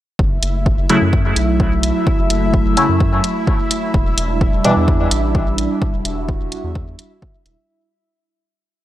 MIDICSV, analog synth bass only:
0, 0, Header, 1, 2, 480
1, 0, Start_track
1, 0, Tempo, 468750
1, 197, Time_signature, 4, 2, 24, 8
1, 9056, End_track
2, 0, Start_track
2, 0, Title_t, "Analog synth bass"
2, 0, Program_c, 0, 38
2, 197, Note_on_c, 0, 30, 101
2, 396, Note_off_c, 0, 30, 0
2, 436, Note_on_c, 0, 30, 86
2, 767, Note_off_c, 0, 30, 0
2, 802, Note_on_c, 0, 30, 95
2, 896, Note_off_c, 0, 30, 0
2, 1042, Note_on_c, 0, 42, 93
2, 1364, Note_off_c, 0, 42, 0
2, 1397, Note_on_c, 0, 35, 98
2, 1967, Note_off_c, 0, 35, 0
2, 2243, Note_on_c, 0, 30, 80
2, 2337, Note_off_c, 0, 30, 0
2, 2357, Note_on_c, 0, 30, 91
2, 2687, Note_off_c, 0, 30, 0
2, 2723, Note_on_c, 0, 30, 91
2, 2817, Note_off_c, 0, 30, 0
2, 2963, Note_on_c, 0, 42, 95
2, 3285, Note_off_c, 0, 42, 0
2, 4037, Note_on_c, 0, 28, 98
2, 4236, Note_off_c, 0, 28, 0
2, 4276, Note_on_c, 0, 28, 86
2, 4606, Note_off_c, 0, 28, 0
2, 4642, Note_on_c, 0, 28, 90
2, 4736, Note_off_c, 0, 28, 0
2, 4883, Note_on_c, 0, 40, 97
2, 5204, Note_off_c, 0, 40, 0
2, 5237, Note_on_c, 0, 33, 99
2, 5807, Note_off_c, 0, 33, 0
2, 6082, Note_on_c, 0, 28, 86
2, 6176, Note_off_c, 0, 28, 0
2, 6197, Note_on_c, 0, 28, 91
2, 6527, Note_off_c, 0, 28, 0
2, 6562, Note_on_c, 0, 28, 94
2, 6656, Note_off_c, 0, 28, 0
2, 6802, Note_on_c, 0, 40, 100
2, 7124, Note_off_c, 0, 40, 0
2, 7636, Note_on_c, 0, 28, 90
2, 7740, Note_off_c, 0, 28, 0
2, 9056, End_track
0, 0, End_of_file